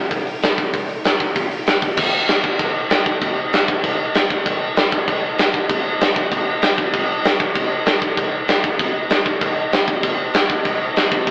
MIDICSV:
0, 0, Header, 1, 2, 480
1, 0, Start_track
1, 0, Tempo, 309917
1, 1145, Time_signature, 4, 2, 24, 8
1, 17515, End_track
2, 0, Start_track
2, 0, Title_t, "Drums"
2, 170, Note_on_c, 9, 36, 96
2, 171, Note_on_c, 9, 46, 76
2, 325, Note_off_c, 9, 36, 0
2, 326, Note_off_c, 9, 46, 0
2, 416, Note_on_c, 9, 46, 60
2, 571, Note_off_c, 9, 46, 0
2, 659, Note_on_c, 9, 46, 81
2, 675, Note_on_c, 9, 38, 118
2, 814, Note_off_c, 9, 46, 0
2, 829, Note_off_c, 9, 38, 0
2, 899, Note_on_c, 9, 36, 84
2, 905, Note_on_c, 9, 46, 54
2, 1054, Note_off_c, 9, 36, 0
2, 1060, Note_off_c, 9, 46, 0
2, 1139, Note_on_c, 9, 46, 78
2, 1141, Note_on_c, 9, 36, 96
2, 1294, Note_off_c, 9, 46, 0
2, 1296, Note_off_c, 9, 36, 0
2, 1384, Note_on_c, 9, 46, 57
2, 1539, Note_off_c, 9, 46, 0
2, 1618, Note_on_c, 9, 46, 72
2, 1633, Note_on_c, 9, 38, 111
2, 1773, Note_off_c, 9, 46, 0
2, 1788, Note_off_c, 9, 38, 0
2, 1860, Note_on_c, 9, 46, 58
2, 1862, Note_on_c, 9, 36, 84
2, 2015, Note_off_c, 9, 46, 0
2, 2017, Note_off_c, 9, 36, 0
2, 2100, Note_on_c, 9, 46, 82
2, 2104, Note_on_c, 9, 36, 98
2, 2255, Note_off_c, 9, 46, 0
2, 2259, Note_off_c, 9, 36, 0
2, 2345, Note_on_c, 9, 46, 68
2, 2500, Note_off_c, 9, 46, 0
2, 2582, Note_on_c, 9, 46, 86
2, 2598, Note_on_c, 9, 38, 117
2, 2737, Note_off_c, 9, 46, 0
2, 2753, Note_off_c, 9, 38, 0
2, 2819, Note_on_c, 9, 46, 65
2, 2822, Note_on_c, 9, 36, 85
2, 2974, Note_off_c, 9, 46, 0
2, 2977, Note_off_c, 9, 36, 0
2, 3051, Note_on_c, 9, 49, 125
2, 3051, Note_on_c, 9, 57, 66
2, 3060, Note_on_c, 9, 36, 117
2, 3206, Note_off_c, 9, 49, 0
2, 3206, Note_off_c, 9, 57, 0
2, 3215, Note_off_c, 9, 36, 0
2, 3531, Note_on_c, 9, 57, 65
2, 3546, Note_on_c, 9, 38, 113
2, 3686, Note_off_c, 9, 57, 0
2, 3701, Note_off_c, 9, 38, 0
2, 3776, Note_on_c, 9, 36, 94
2, 3930, Note_off_c, 9, 36, 0
2, 4016, Note_on_c, 9, 57, 64
2, 4017, Note_on_c, 9, 36, 100
2, 4171, Note_off_c, 9, 57, 0
2, 4172, Note_off_c, 9, 36, 0
2, 4493, Note_on_c, 9, 57, 67
2, 4508, Note_on_c, 9, 38, 121
2, 4648, Note_off_c, 9, 57, 0
2, 4663, Note_off_c, 9, 38, 0
2, 4741, Note_on_c, 9, 36, 93
2, 4896, Note_off_c, 9, 36, 0
2, 4981, Note_on_c, 9, 36, 102
2, 4983, Note_on_c, 9, 57, 63
2, 5136, Note_off_c, 9, 36, 0
2, 5138, Note_off_c, 9, 57, 0
2, 5465, Note_on_c, 9, 57, 67
2, 5480, Note_on_c, 9, 38, 112
2, 5620, Note_off_c, 9, 57, 0
2, 5635, Note_off_c, 9, 38, 0
2, 5705, Note_on_c, 9, 36, 97
2, 5859, Note_off_c, 9, 36, 0
2, 5941, Note_on_c, 9, 57, 69
2, 5945, Note_on_c, 9, 36, 101
2, 6096, Note_off_c, 9, 57, 0
2, 6100, Note_off_c, 9, 36, 0
2, 6419, Note_on_c, 9, 57, 76
2, 6435, Note_on_c, 9, 38, 120
2, 6574, Note_off_c, 9, 57, 0
2, 6590, Note_off_c, 9, 38, 0
2, 6666, Note_on_c, 9, 36, 88
2, 6821, Note_off_c, 9, 36, 0
2, 6903, Note_on_c, 9, 57, 71
2, 6907, Note_on_c, 9, 36, 100
2, 7058, Note_off_c, 9, 57, 0
2, 7062, Note_off_c, 9, 36, 0
2, 7378, Note_on_c, 9, 57, 67
2, 7394, Note_on_c, 9, 38, 114
2, 7533, Note_off_c, 9, 57, 0
2, 7549, Note_off_c, 9, 38, 0
2, 7626, Note_on_c, 9, 36, 91
2, 7781, Note_off_c, 9, 36, 0
2, 7862, Note_on_c, 9, 57, 67
2, 7865, Note_on_c, 9, 36, 99
2, 8017, Note_off_c, 9, 57, 0
2, 8020, Note_off_c, 9, 36, 0
2, 8338, Note_on_c, 9, 57, 71
2, 8353, Note_on_c, 9, 38, 124
2, 8493, Note_off_c, 9, 57, 0
2, 8508, Note_off_c, 9, 38, 0
2, 8581, Note_on_c, 9, 36, 87
2, 8736, Note_off_c, 9, 36, 0
2, 8818, Note_on_c, 9, 57, 64
2, 8821, Note_on_c, 9, 36, 104
2, 8973, Note_off_c, 9, 57, 0
2, 8975, Note_off_c, 9, 36, 0
2, 9302, Note_on_c, 9, 57, 63
2, 9317, Note_on_c, 9, 38, 112
2, 9457, Note_off_c, 9, 57, 0
2, 9472, Note_off_c, 9, 38, 0
2, 9543, Note_on_c, 9, 36, 87
2, 9698, Note_off_c, 9, 36, 0
2, 9779, Note_on_c, 9, 57, 65
2, 9783, Note_on_c, 9, 36, 103
2, 9934, Note_off_c, 9, 57, 0
2, 9938, Note_off_c, 9, 36, 0
2, 10252, Note_on_c, 9, 57, 73
2, 10267, Note_on_c, 9, 38, 123
2, 10407, Note_off_c, 9, 57, 0
2, 10422, Note_off_c, 9, 38, 0
2, 10502, Note_on_c, 9, 36, 89
2, 10657, Note_off_c, 9, 36, 0
2, 10740, Note_on_c, 9, 57, 73
2, 10743, Note_on_c, 9, 36, 98
2, 10895, Note_off_c, 9, 57, 0
2, 10898, Note_off_c, 9, 36, 0
2, 11221, Note_on_c, 9, 57, 66
2, 11236, Note_on_c, 9, 38, 116
2, 11375, Note_off_c, 9, 57, 0
2, 11391, Note_off_c, 9, 38, 0
2, 11462, Note_on_c, 9, 36, 95
2, 11617, Note_off_c, 9, 36, 0
2, 11696, Note_on_c, 9, 57, 71
2, 11701, Note_on_c, 9, 36, 98
2, 11851, Note_off_c, 9, 57, 0
2, 11855, Note_off_c, 9, 36, 0
2, 12170, Note_on_c, 9, 57, 67
2, 12186, Note_on_c, 9, 38, 122
2, 12325, Note_off_c, 9, 57, 0
2, 12340, Note_off_c, 9, 38, 0
2, 12419, Note_on_c, 9, 36, 92
2, 12574, Note_off_c, 9, 36, 0
2, 12660, Note_on_c, 9, 36, 100
2, 12660, Note_on_c, 9, 57, 60
2, 12815, Note_off_c, 9, 36, 0
2, 12815, Note_off_c, 9, 57, 0
2, 13134, Note_on_c, 9, 57, 64
2, 13150, Note_on_c, 9, 38, 113
2, 13289, Note_off_c, 9, 57, 0
2, 13305, Note_off_c, 9, 38, 0
2, 13381, Note_on_c, 9, 36, 92
2, 13536, Note_off_c, 9, 36, 0
2, 13617, Note_on_c, 9, 57, 63
2, 13620, Note_on_c, 9, 36, 101
2, 13772, Note_off_c, 9, 57, 0
2, 13775, Note_off_c, 9, 36, 0
2, 14091, Note_on_c, 9, 57, 69
2, 14107, Note_on_c, 9, 38, 119
2, 14246, Note_off_c, 9, 57, 0
2, 14262, Note_off_c, 9, 38, 0
2, 14340, Note_on_c, 9, 36, 93
2, 14495, Note_off_c, 9, 36, 0
2, 14573, Note_on_c, 9, 57, 65
2, 14580, Note_on_c, 9, 36, 100
2, 14728, Note_off_c, 9, 57, 0
2, 14735, Note_off_c, 9, 36, 0
2, 15059, Note_on_c, 9, 57, 71
2, 15075, Note_on_c, 9, 38, 109
2, 15214, Note_off_c, 9, 57, 0
2, 15230, Note_off_c, 9, 38, 0
2, 15298, Note_on_c, 9, 36, 98
2, 15453, Note_off_c, 9, 36, 0
2, 15532, Note_on_c, 9, 57, 72
2, 15539, Note_on_c, 9, 36, 103
2, 15687, Note_off_c, 9, 57, 0
2, 15694, Note_off_c, 9, 36, 0
2, 16011, Note_on_c, 9, 57, 72
2, 16027, Note_on_c, 9, 38, 124
2, 16166, Note_off_c, 9, 57, 0
2, 16182, Note_off_c, 9, 38, 0
2, 16258, Note_on_c, 9, 36, 87
2, 16413, Note_off_c, 9, 36, 0
2, 16491, Note_on_c, 9, 57, 68
2, 16498, Note_on_c, 9, 36, 98
2, 16646, Note_off_c, 9, 57, 0
2, 16653, Note_off_c, 9, 36, 0
2, 16977, Note_on_c, 9, 57, 61
2, 16993, Note_on_c, 9, 38, 106
2, 17132, Note_off_c, 9, 57, 0
2, 17147, Note_off_c, 9, 38, 0
2, 17218, Note_on_c, 9, 36, 93
2, 17373, Note_off_c, 9, 36, 0
2, 17458, Note_on_c, 9, 36, 104
2, 17464, Note_on_c, 9, 57, 64
2, 17515, Note_off_c, 9, 36, 0
2, 17515, Note_off_c, 9, 57, 0
2, 17515, End_track
0, 0, End_of_file